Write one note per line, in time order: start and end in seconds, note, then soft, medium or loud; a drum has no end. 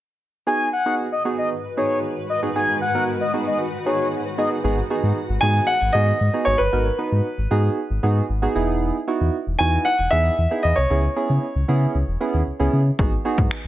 0.47 4.60 G#2 medium
0.47 4.34 D#3 medium
0.47 0.68 B3 medium
0.47 0.68 D#4 medium
0.47 4.34 F#4 medium
0.47 0.68 F#4 medium
0.47 0.68 G#4 medium
0.47 4.60 B4 medium
0.47 0.69 G#5 medium
0.73 0.95 F#5 medium
0.86 1.07 B3 medium
0.86 1.07 D#4 medium
0.86 1.07 F#4 medium
0.86 1.08 G#4 medium
1.12 1.23 D#5 medium
1.25 1.54 B3 medium
1.25 1.54 D#4 medium
1.25 1.54 F#4 medium
1.25 1.54 G#4 medium
1.38 1.49 D#5 medium
1.77 2.13 B3 medium
1.77 2.13 D#4 medium
1.77 2.13 F#4 medium
1.77 2.13 G#4 medium
1.77 1.99 C#5 medium
2.30 2.41 D#5 medium
2.42 2.50 B3 medium
2.42 2.50 D#4 medium
2.42 2.50 F#4 medium
2.42 2.50 G#4 medium
2.55 2.77 B3 medium
2.55 2.77 D#4 medium
2.55 2.77 F#4 medium
2.55 2.77 G#4 medium
2.55 2.78 G#5 medium
2.81 3.04 F#5 medium
2.94 3.16 B3 medium
2.94 3.16 D#4 medium
2.94 3.16 F#4 medium
2.94 3.16 A#4 medium
3.21 3.32 D#5 medium
3.33 3.62 B3 medium
3.33 3.62 D#4 medium
3.33 3.62 F#4 medium
3.33 3.63 G#4 medium
3.47 3.58 D#5 medium
3.86 4.22 B3 medium
3.86 4.22 D#4 medium
3.86 4.22 F#4 medium
3.86 4.22 G#4 medium
3.86 4.08 C#5 medium
4.38 4.59 B3 medium
4.38 4.59 D#4 medium
4.38 4.59 F#4 medium
4.38 4.59 G#4 medium
4.38 4.49 D#5 medium
4.64 4.82 G#1 loud
4.64 4.78 B3 medium
4.64 4.79 D#4 medium
4.64 4.79 F#4 medium
4.64 4.79 G#4 loud
4.90 5.19 B3 medium
4.90 5.19 D#4 medium
4.90 5.19 F#4 medium
4.90 5.19 G#4 medium
5.03 5.12 G#2 medium
5.29 5.38 G#1 loud
5.41 5.60 G#2 loud
5.41 5.71 B3 medium
5.41 5.71 D#4 medium
5.41 5.71 F#4 medium
5.41 5.71 G#4 medium
5.41 5.68 G#5 loud
5.67 5.95 F#5 loud
5.81 5.90 G#1 medium
5.93 6.12 G#2 loud
5.93 6.16 B3 medium
5.93 6.16 D#4 medium
5.93 6.16 F#4 medium
5.93 6.16 G#4 medium
5.93 6.47 D#5 medium
6.21 6.30 G#2 medium
6.33 6.55 B3 medium
6.33 6.55 D#4 medium
6.33 6.55 F#4 medium
6.33 6.55 G#4 medium
6.45 6.56 G#1 loud
6.45 6.59 C#5 medium
6.58 6.69 G1 medium
6.58 8.51 B4 medium
6.72 6.91 G#1 loud
6.72 6.87 B3 medium
6.72 6.87 D#4 medium
6.72 6.87 F#4 medium
6.72 6.87 A#4 medium
6.98 7.27 B3 medium
6.98 7.27 D#4 medium
6.98 7.28 F#4 medium
6.98 7.28 B4 medium
7.12 7.21 G#2 medium
7.38 7.47 G#1 medium
7.51 7.69 G#2 loud
7.51 7.80 B3 medium
7.51 7.80 D#4 medium
7.51 7.80 F#4 medium
7.51 7.80 G#4 medium
7.90 7.99 G#1 medium
8.03 8.21 G#2 loud
8.03 8.25 B3 medium
8.03 8.25 D#4 medium
8.03 8.25 F#4 medium
8.03 8.25 G#4 medium
8.29 8.47 G#1 medium
8.42 8.54 B3 medium
8.42 8.54 D#4 medium
8.42 8.55 F#4 medium
8.42 8.54 G#4 medium
8.55 8.91 E1 loud
8.55 8.97 B3 medium
8.55 8.97 D#4 medium
8.55 8.97 E4 medium
8.55 8.97 G#4 loud
9.07 9.36 B3 medium
9.07 9.36 D#4 medium
9.07 9.36 E4 medium
9.07 9.36 F#4 medium
9.21 9.30 E2 loud
9.47 9.56 E1 loud
9.59 9.78 E2 loud
9.59 9.88 B3 medium
9.59 9.89 D#4 medium
9.59 9.89 E4 medium
9.59 9.89 F#4 medium
9.59 9.86 G#5 loud
9.85 10.12 F#5 loud
9.99 10.08 E1 loud
10.11 10.30 E2 medium
10.11 10.33 B3 medium
10.11 10.33 D#4 medium
10.11 10.34 E4 medium
10.11 10.34 G#4 medium
10.11 10.65 E5 loud
10.38 10.47 E2 loud
10.51 10.72 B3 medium
10.51 10.73 D#4 medium
10.51 10.73 E4 medium
10.51 10.73 G#4 medium
10.63 10.73 E2 medium
10.63 10.77 D#5 medium
10.76 10.86 C2 medium
10.76 12.68 C#5 medium
10.90 11.08 C#2 loud
10.90 11.05 B3 medium
10.90 11.05 C#4 medium
10.90 11.05 E4 medium
10.90 11.05 G#4 medium
11.16 11.45 B3 medium
11.16 11.45 C#4 medium
11.16 11.45 E4 medium
11.16 11.45 G#4 medium
11.29 11.38 C#3 medium
11.55 11.64 C#2 loud
11.68 11.87 C#3 loud
11.68 11.97 B3 medium
11.68 11.97 C#4 medium
11.68 11.97 E4 medium
11.68 11.97 G#4 medium
11.95 12.04 C#2 loud
12.08 12.17 E1 medium
12.20 12.42 B3 medium
12.20 12.42 C#4 medium
12.20 12.42 E4 medium
12.20 12.42 G#4 medium
12.34 12.43 D#2 medium
12.47 12.52 C#2 soft
12.59 12.69 C#2 medium
12.59 12.81 B3 medium
12.59 12.81 C#4 medium
12.59 12.81 E4 medium
12.59 12.81 G#4 medium
12.73 12.91 C#3 loud
12.99 13.17 G#1 loud
12.99 13.13 B3 medium
12.99 13.13 D#4 medium
12.99 13.13 F#4 medium
12.99 13.13 G#4 medium
12.99 kick loud
13.25 13.54 B3 medium
13.25 13.54 D#4 medium
13.25 13.54 F#4 medium
13.25 13.54 G#4 medium
13.38 13.47 G#2 loud
13.38 kick medium
13.51 finger snap loud
13.64 13.67 G#1 loud